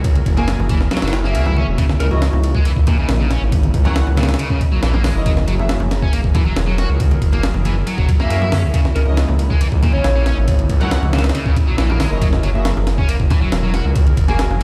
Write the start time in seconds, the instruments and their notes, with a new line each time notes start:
Already playing: detuned saw bass C#2, analog synth pad F#3 E4 G#4 A#4
0.04 kick, ride
0.16 ride, high conga
0.26 detuned saw bass F#1, kick, ride
0.37 string section A#3 F#4 G#4 G#5, distorted electric guitar A#3, ride, low conga
0.48 snare, ride
0.59 detuned saw bass F#1, low conga
0.69 distorted electric guitar E3, kick, ride, high conga
0.81 snare
0.91 distorted electric guitar F#3, snare, ride
0.97 snare, ride
1.02 detuned saw bass F#1, distorted electric guitar F#3, snare, ride
1.08 snare, ride
1.13 snare, ride
1.24 string section A#3 F#4 G#4 E5, distorted electric guitar A#3, snare
1.35 detuned saw bass C#2, distorted electric guitar A#3, ride
1.46 distorted electric guitar E4, low conga
1.57 distorted electric guitar C#4, high conga
1.68 detuned saw bass E1
1.78 analog synth pad C#3 A#3 D#4, distorted electric guitar C#3, kick, ride
1.90 snare, high conga
2.00 detuned saw bass C#2, distorted electric guitar C#3, digital synth lead A#4, ride
2.11 string section C#4 E4 A#4 D#5, digital synth lead F#4, low conga
2.22 snare, ride
2.33 detuned saw bass C#2, low conga
2.43 ride
2.55 distorted electric guitar G#3, kick
2.65 detuned saw bass C#2, distorted electric guitar E3, ride
2.76 detuned saw bass C#2, kick
2.87 distorted electric guitar A#2, kick, ride, low conga
2.98 detuned saw bass A#1, distorted electric guitar C#3, high conga
3.09 detuned saw bass A#1, snare, ride
3.20 distorted electric guitar C#3
3.31 distorted electric guitar C#4, snare, ride
3.42 detuned saw bass G#1
3.52 kick, ride
3.63 ride, high conga
3.74 detuned saw bass C#2, kick, ride
3.85 distorted electric guitar F#3, string section C#4 E4 A#4 F#5, ride, low conga
3.96 snare, ride
4.07 detuned saw bass C#2, low conga
4.17 distorted electric guitar A#2, snare, ride, high conga
4.23 snare, ride
4.29 snare, ride
4.34 snare, ride
4.39 distorted electric guitar C#3, ride
4.50 detuned saw bass C#2, distorted electric guitar C#3, kick
4.61 kick, ride
4.72 detuned saw bass A#1, distorted electric guitar F#3
4.82 detuned saw bass A#1, distorted electric guitar E3, snare, ride
4.94 distorted electric guitar A#3, low conga
5.04 distorted electric guitar G#3, snare, open hi-hat, high conga
5.15 detuned saw bass F#1, string section C#4 E4 A#4 D#5
5.25 analog synth pad F#3 E4 G#4 A#4, distorted electric guitar F#3, kick, ride
5.37 snare, high conga
5.48 detuned saw bass F#1, distorted electric guitar F#3, ride
5.59 string section A#3 F#4 G#4 E5, low conga
5.69 snare, ride
5.80 detuned saw bass F#1, low conga
5.91 snare, ride
6.02 distorted electric guitar C#4, kick
6.13 detuned saw bass F#1, distorted electric guitar A#3, ride
6.24 detuned saw bass F#1, kick
6.35 distorted electric guitar E3, kick, ride, low conga
6.45 detuned saw bass E1, distorted electric guitar F#3, high conga
6.56 detuned saw bass E1, snare, ride
6.68 distorted electric guitar F#3
6.78 distorted electric guitar F#4, snare, ride
6.89 detuned saw bass C#2
7.00 kick, ride
7.11 ride, high conga
7.22 detuned saw bass F#1, kick, ride
7.32 distorted electric guitar A#3, ride, low conga
7.43 snare, ride
7.54 detuned saw bass F#1, low conga
7.65 distorted electric guitar E3, ride, high conga
7.87 distorted electric guitar F#3, ride
7.98 detuned saw bass F#1, distorted electric guitar F#3, kick
8.09 kick, ride
8.20 detuned saw bass F#2, distorted electric guitar A#3, string section A#3 F#4 G#4 E5, snare
8.30 detuned saw bass F#2, distorted electric guitar A#3, ride
8.41 distorted electric guitar E4, low conga
8.52 distorted electric guitar C#4, snare, open hi-hat, high conga
8.63 detuned saw bass C#2
8.74 distorted electric guitar C#3, analog synth pad C#3 A#3 D#4, kick, ride
8.85 snare, high conga
8.95 detuned saw bass C#2, distorted electric guitar C#3, digital synth lead A#4, ride
9.06 string section C#4 E4 A#4 D#5, low conga
9.17 snare, ride
9.28 detuned saw bass C#2, low conga
9.39 ride
9.50 distorted electric guitar G#3, kick
9.61 detuned saw bass C#2, distorted electric guitar E3, ride
9.72 detuned saw bass C#2, kick
9.83 distorted electric guitar A#2, kick, ride, low conga
9.93 detuned saw bass A#1, distorted electric guitar C#3, digital synth lead C#5, high conga
10.04 detuned saw bass A#1, snare, ride
10.15 distorted electric guitar C#3
10.26 distorted electric guitar C#4, snare, ride
10.37 detuned saw bass G#1
10.48 kick, ride
10.59 ride, high conga
10.69 detuned saw bass C#2, kick, ride
10.81 distorted electric guitar F#3, string section C#4 E4 A#4 F#5, ride, low conga
10.91 snare, ride
11.03 detuned saw bass C#2, low conga
11.13 distorted electric guitar A#2, snare, ride, high conga
11.19 snare, ride
11.24 snare, ride
11.29 snare, ride
11.35 distorted electric guitar C#3, ride
11.46 detuned saw bass C#2, distorted electric guitar C#3, kick
11.56 kick, ride
11.68 detuned saw bass A#1, distorted electric guitar F#3
11.78 detuned saw bass A#1, distorted electric guitar E3, snare, ride
11.89 distorted electric guitar A#3, low conga
12.00 distorted electric guitar G#3, snare, open hi-hat, high conga
12.11 detuned saw bass F#1, string section C#4 E4 A#4 D#5
12.22 distorted electric guitar F#3, analog synth pad F#3 G#4 A#4, kick, ride
12.33 snare, high conga
12.43 detuned saw bass F#1, distorted electric guitar F#3, ride
12.54 string section A#3 F#4 G#4 E5, low conga
12.65 snare, ride
12.76 detuned saw bass F#1, low conga
12.87 snare, ride
12.98 distorted electric guitar C#4, kick
13.08 detuned saw bass F#1, distorted electric guitar A#3, ride
13.20 detuned saw bass F#1, kick
13.30 distorted electric guitar E3, kick, ride, low conga
13.41 detuned saw bass E1, distorted electric guitar F#3, high conga
13.52 detuned saw bass E1, snare, ride
13.63 distorted electric guitar F#3
13.74 distorted electric guitar F#4, snare, ride
13.85 detuned saw bass C#2
13.96 kick, ride
14.07 ride, high conga
14.17 detuned saw bass F#1, kick, ride
14.28 string section A#3 F#4 G#4 G#5, distorted electric guitar A#3, ride, low conga
14.39 snare, ride
14.50 detuned saw bass F#1, low conga